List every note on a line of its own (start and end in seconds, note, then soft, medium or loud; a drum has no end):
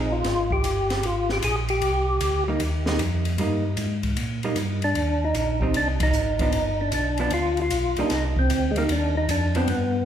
0.00 0.23 A#1 medium
0.00 0.13 D#4 medium
0.00 0.10 G#4 medium
0.12 0.52 F4 loud
0.24 0.63 G#1 medium
0.24 snare soft
0.24 ride medium
0.51 1.06 G4 medium
0.51 kick medium
0.64 1.02 G1 medium
0.64 hi-hat pedal soft
0.64 ride medium
0.90 snare soft
0.90 ride soft
1.03 1.41 G#1 medium
1.03 1.31 F4 medium
1.03 ride medium
1.29 1.38 G4 loud
1.29 snare soft
1.42 1.81 A#1 medium
1.42 1.56 G#4 medium
1.42 hi-hat pedal medium
1.42 ride medium
1.68 2.44 G4 loud
1.68 ride soft
1.81 2.20 C2 medium
1.81 ride medium
2.20 2.59 D2 medium
2.20 hi-hat pedal soft
2.20 ride medium
2.48 2.60 G3 medium
2.48 2.60 A#3 medium
2.48 2.60 D#4 medium
2.60 2.98 D#2 medium
2.60 ride medium
2.86 2.99 G3 medium
2.86 2.99 A#3 medium
2.86 3.00 D#4 medium
2.86 snare soft
2.98 3.37 F2 medium
2.98 hi-hat pedal soft
2.98 ride medium
3.25 ride soft
3.38 3.77 G2 medium
3.38 3.63 G3 medium
3.38 3.63 A#3 medium
3.38 3.63 D#4 medium
3.38 ride medium
3.77 4.16 G#2 medium
3.77 hi-hat pedal medium
3.77 ride medium
4.03 kick soft
4.03 ride soft
4.17 4.55 A#2 medium
4.17 ride medium
4.43 4.56 G3 medium
4.43 4.56 A#3 medium
4.43 4.56 D#4 medium
4.43 ride soft
4.56 4.94 G2 medium
4.56 hi-hat pedal medium
4.56 ride medium
4.82 5.24 D4 loud
4.82 ride soft
4.95 5.34 D#2 medium
4.95 ride medium
5.25 5.60 D#4 loud
5.34 5.73 A#1 medium
5.34 hi-hat pedal medium
5.34 ride medium
5.61 5.74 G3 medium
5.61 5.74 C4 medium
5.61 5.74 D#4 medium
5.61 kick soft
5.74 6.12 C2 medium
5.74 5.88 D4 medium
5.74 ride medium
6.00 6.40 D#4 medium
6.00 kick medium
6.00 ride medium
6.13 6.52 G#1 medium
6.13 hi-hat pedal medium
6.39 6.53 F3 medium
6.39 6.53 B3 medium
6.39 6.53 D4 medium
6.39 6.81 D#4 loud
6.39 kick medium
6.39 ride soft
6.52 6.92 G1 medium
6.52 ride medium
6.81 6.93 D4 medium
6.92 7.31 B1 medium
6.92 7.20 D4 medium
6.92 hi-hat pedal medium
6.92 ride medium
7.17 7.31 F3 medium
7.17 7.31 B3 medium
7.17 7.32 D4 medium
7.17 ride soft
7.30 7.70 D2 medium
7.30 7.60 F4 loud
7.30 ride medium
7.57 ride soft
7.62 8.00 F4 loud
7.70 7.95 B1 medium
7.70 hi-hat pedal medium
7.70 ride medium
7.96 8.04 B1 soft
7.96 8.10 G3 medium
7.96 8.10 A#3 medium
7.96 8.12 D4 medium
7.96 8.11 D#4 medium
7.96 ride soft
8.10 8.49 C2 medium
8.10 8.25 D#4 medium
8.10 snare soft
8.10 ride medium
8.36 8.72 C4 medium
8.36 kick medium
8.50 8.88 D2 medium
8.50 hi-hat pedal medium
8.50 ride medium
8.71 8.77 G#3 medium
8.76 8.89 G3 medium
8.76 8.89 A#3 medium
8.76 8.84 A#3 medium
8.76 8.89 D#4 medium
8.76 ride soft
8.89 9.28 D#2 medium
8.89 9.15 D4 medium
8.89 ride medium
9.17 9.29 D#4 medium
9.29 9.67 F2 loud
9.29 9.57 D4 medium
9.29 hi-hat pedal soft
9.29 ride medium
9.55 9.67 F3 medium
9.55 9.68 B3 medium
9.55 9.70 C4 medium
9.55 9.68 D4 medium
9.55 ride soft
9.68 10.05 G2 medium
9.68 10.05 B3 medium
9.68 ride medium